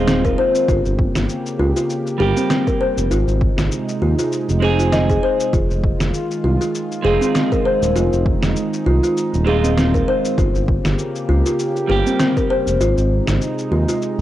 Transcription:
0.00 0.34 D#1 medium
0.00 0.64 D#3 medium
0.00 0.64 G#3 medium
0.00 0.66 G#3 medium
0.00 14.21 A#3 medium
0.00 0.66 C4 medium
0.00 0.67 D#4 medium
0.00 0.64 F4 medium
0.00 0.68 F4 loud
0.00 14.21 A#4 medium
0.07 0.24 C4 loud
0.07 snare medium
0.07 shaker medium
0.25 0.32 A#4 medium
0.25 kick medium
0.25 shaker soft
0.38 0.54 C5 loud
0.55 shaker medium
0.68 0.82 G1 loud
0.68 3.08 C#3 medium
0.68 3.08 A#3 medium
0.68 0.78 F4 medium
0.68 3.08 G4 medium
0.68 kick loud
0.68 shaker medium
0.85 1.08 G1 medium
0.85 shaker soft
0.99 kick loud
1.15 1.26 G1 medium
1.15 snare medium
1.15 shaker medium
1.29 shaker medium
1.46 shaker soft
1.59 1.73 C#2 loud
1.59 1.75 F4 medium
1.76 1.89 F4 medium
1.76 shaker medium
1.90 shaker soft
2.07 shaker soft
2.18 2.33 G1 medium
2.18 3.08 G3 medium
2.18 3.09 A#3 medium
2.18 2.36 G4 medium
2.22 3.10 G4 loud
2.37 2.49 C4 medium
2.37 shaker medium
2.50 2.66 C4 medium
2.50 snare medium
2.50 shaker medium
2.67 2.75 A#4 medium
2.67 kick medium
2.67 shaker soft
2.81 2.97 C5 medium
2.97 3.08 F1 medium
2.97 shaker medium
3.10 3.24 G#1 loud
3.10 5.51 C3 medium
3.10 5.51 G#3 medium
3.10 5.51 D#4 medium
3.10 3.21 F4 medium
3.10 shaker medium
3.28 3.51 G#1 medium
3.28 shaker soft
3.41 kick loud
3.58 3.68 G#1 medium
3.58 snare medium
3.58 shaker medium
3.72 shaker medium
3.89 shaker soft
4.01 4.15 D#2 medium
4.01 4.17 F4 medium
4.19 4.31 F4 medium
4.19 shaker medium
4.32 shaker medium
4.49 5.18 F1 medium
4.49 shaker soft
4.60 5.51 G#3 medium
4.60 5.51 C4 medium
4.60 5.52 D#4 medium
4.60 4.78 G#4 medium
4.64 5.53 G#4 loud
4.79 4.92 F4 medium
4.79 shaker medium
4.93 5.09 D#5 medium
4.93 snare medium
4.93 shaker medium
5.10 5.22 G#4 loud
5.10 kick medium
5.10 shaker soft
5.23 5.39 C5 medium
5.40 shaker medium
5.53 5.67 F1 loud
5.53 10.34 D#3 medium
5.53 10.34 G#3 medium
5.53 5.63 F4 medium
5.53 7.93 F4 medium
5.53 kick loud
5.53 shaker medium
5.70 5.93 F1 medium
5.70 shaker soft
5.84 kick loud
6.00 6.11 F1 medium
6.00 snare medium
6.00 shaker medium
6.14 shaker medium
6.31 shaker soft
6.44 6.57 C2 medium
6.44 6.59 F4 medium
6.61 6.74 F4 medium
6.61 shaker medium
6.75 shaker soft
6.92 shaker soft
7.02 7.18 F1 medium
7.02 9.43 G#3 medium
7.02 9.43 C4 medium
7.02 9.44 D#4 medium
7.02 7.21 G#4 medium
7.06 9.45 F4 loud
7.21 7.34 C4 medium
7.21 shaker medium
7.35 7.51 C4 loud
7.35 snare medium
7.35 shaker medium
7.52 7.60 A#4 medium
7.52 kick medium
7.52 shaker soft
7.65 7.81 C5 medium
7.82 7.93 D#1 medium
7.82 shaker medium
7.95 8.09 F1 medium
7.95 10.36 D#4 medium
7.95 8.05 F4 loud
7.95 shaker medium
8.12 8.36 F1 medium
8.12 shaker soft
8.26 kick loud
8.43 8.53 F1 medium
8.43 snare medium
8.43 shaker medium
8.56 shaker medium
8.74 shaker soft
8.86 9.00 C2 medium
8.86 9.02 F4 medium
9.03 9.16 F4 medium
9.03 shaker medium
9.17 shaker medium
9.34 10.03 D#1 medium
9.34 shaker soft
9.45 10.35 G#3 medium
9.45 10.36 C4 medium
9.45 10.37 D#4 medium
9.45 10.37 F4 loud
9.45 9.63 G#4 medium
9.64 9.76 C4 medium
9.64 shaker medium
9.78 9.94 C4 loud
9.78 snare medium
9.78 shaker medium
9.94 10.02 A#4 medium
9.94 kick medium
9.94 shaker soft
10.08 10.24 C5 medium
10.25 shaker medium
10.38 10.51 G1 medium
10.38 12.78 C#3 medium
10.38 12.78 A#3 medium
10.38 10.48 F4 medium
10.38 12.78 G4 medium
10.38 kick loud
10.38 shaker soft
10.55 10.78 G1 medium
10.55 shaker soft
10.68 kick loud
10.85 10.96 G1 medium
10.85 snare medium
10.85 shaker medium
10.99 shaker soft
11.16 shaker soft
11.29 11.42 C#2 medium
11.29 11.44 F4 medium
11.46 11.59 F4 medium
11.46 shaker medium
11.59 shaker medium
11.76 shaker soft
11.87 12.03 G1 medium
11.87 12.78 G3 medium
11.87 12.78 A#3 medium
11.87 12.06 G4 medium
11.87 12.80 G4 loud
12.06 12.19 C4 medium
12.06 shaker medium
12.19 12.36 C4 loud
12.19 snare medium
12.19 shaker medium
12.37 12.44 A#4 medium
12.37 kick medium
12.37 shaker soft
12.50 12.66 C5 medium
12.67 12.78 F1 medium
12.67 shaker medium
12.80 12.94 G#1 medium
12.80 14.21 C3 medium
12.80 14.21 G#3 medium
12.80 14.21 D#4 medium
12.80 12.90 F4 medium
12.80 shaker medium
12.97 13.20 G#1 medium
12.97 shaker soft
13.27 13.38 G#1 medium
13.27 snare medium
13.27 shaker medium
13.41 shaker medium
13.58 shaker soft
13.71 13.85 D#2 medium
13.71 13.87 F4 medium
13.88 14.01 F4 medium
13.88 shaker medium
14.02 shaker soft
14.18 14.21 F1 medium

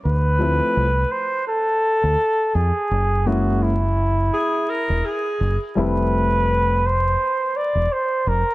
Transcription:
0.05 0.60 D2 medium
0.05 1.13 B4 loud
0.39 0.83 F3 medium
0.39 0.84 A3 medium
0.39 0.85 C4 medium
0.39 0.85 E4 medium
0.77 1.04 C2 loud
1.11 1.47 C5 loud
1.47 2.56 A4 loud
2.04 2.15 D2 medium
2.55 2.71 F2 medium
2.55 3.28 G#4 medium
2.91 4.29 F#1 medium
3.25 3.70 G#3 medium
3.25 3.70 A#3 medium
3.25 3.70 C#4 medium
3.25 3.71 E4 medium
3.25 3.64 F#4 medium
3.63 5.41 E4 medium
4.33 4.71 G#4 medium
4.70 5.07 A#4 medium
4.89 5.01 E1 medium
5.05 5.61 G#4 medium
5.41 5.56 F#1 medium
5.75 7.15 F1 medium
5.75 6.77 G3 medium
5.75 6.77 A3 medium
5.75 6.78 C4 medium
5.75 6.78 E4 medium
5.79 6.88 B4 loud
6.86 7.58 C5 loud
7.57 7.94 D5 medium
7.75 7.87 E1 medium
7.93 8.30 C5 medium
8.27 8.42 F1 medium
8.27 8.55 A#4 medium

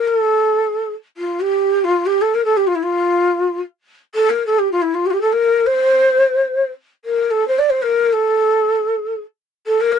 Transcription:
0.08 0.20 A#4 medium
0.20 0.91 A4 medium
1.17 1.42 F4 medium
1.41 1.86 G4 medium
1.84 2.07 F4 medium
2.06 2.23 G4 medium
2.21 2.36 A4 medium
2.34 2.44 A#4 medium
2.44 2.58 A4 medium
2.57 2.69 G4 medium
2.67 2.77 F4 medium
2.75 2.84 E4 medium
2.83 3.59 F4 medium
4.15 4.31 A4 medium
4.30 4.45 A#4 medium
4.46 4.60 A4 medium
4.59 4.71 G4 medium
4.72 4.84 F4 medium
4.82 4.96 E4 medium
4.94 5.07 F4 medium
5.06 5.12 G4 medium
5.10 5.15 F4 medium
5.10 5.20 G4 medium
5.21 5.34 A4 medium
5.32 5.68 A#4 medium
5.66 6.66 C5 medium
7.05 7.32 A#4 medium
7.30 7.47 A4 medium
7.48 7.60 C5 medium
7.59 7.71 D5 medium
7.70 7.84 C5 medium
7.82 8.14 A#4 medium
8.13 9.20 A4 medium
9.67 9.82 A4 medium
9.81 9.94 A#4 medium
9.92 9.99 C5 medium

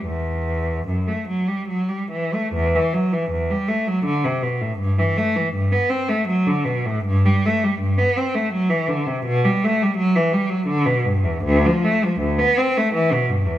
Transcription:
0.06 0.86 E2 medium
0.87 1.07 F#2 medium
1.08 1.28 A3 soft
1.28 1.48 F#3 soft
1.48 1.68 G3 medium
1.68 1.88 F#3 medium
1.89 2.10 G3 soft
2.11 2.32 E3 soft
2.34 2.53 A3 medium
2.54 2.73 E2 medium
2.75 2.93 E3 medium
2.93 3.11 F#3 medium
3.12 3.30 E3 medium
3.31 3.49 E2 medium
3.50 3.68 G3 medium
3.68 3.86 A3 medium
3.87 4.05 F#3 medium
4.05 4.23 D3 medium
4.25 4.42 C3 medium
4.42 4.60 B2 medium
4.61 4.79 A2 medium
4.79 4.97 G2 medium
4.99 5.16 E3 medium
5.17 5.35 A3 medium
5.36 5.54 E3 medium
5.54 5.72 G2 medium
5.72 5.90 B3 medium
5.89 6.08 C4 medium
6.09 6.27 A3 medium
6.28 6.46 F#3 medium
6.47 6.66 D3 medium
6.65 6.85 B2 medium
6.86 7.05 A2 medium
7.05 7.24 G2 medium
7.25 7.44 G3 medium
7.45 7.63 A3 medium
7.64 7.81 G3 medium
7.80 7.98 G2 medium
7.98 8.16 B3 medium
8.17 8.35 C4 medium
8.35 8.53 A3 medium
8.53 8.71 F#3 medium
8.70 8.89 E3 medium
8.88 9.07 D3 medium
9.06 9.25 C3 medium
9.25 9.43 B2 medium
9.44 9.62 G3 medium
9.64 9.81 A3 medium
9.82 9.99 G3 medium
9.97 10.15 F#3 medium
10.16 10.34 E3 medium
10.33 10.51 G3 medium
10.50 10.69 F#3 medium
10.67 10.87 D3 medium
10.86 11.06 B2 medium
11.04 11.25 G2 medium
11.23 11.45 E2 medium
11.44 11.64 D2 medium
11.65 11.85 F3 medium
11.84 12.03 A3 medium
12.04 12.22 F3 medium
12.20 12.38 D2 medium
12.39 12.57 B3 medium
12.58 12.75 C4 medium
12.77 12.94 A3 medium
12.94 13.11 E3 medium
13.12 13.29 B2 medium
13.29 13.46 G2 medium
13.45 13.58 E2 medium

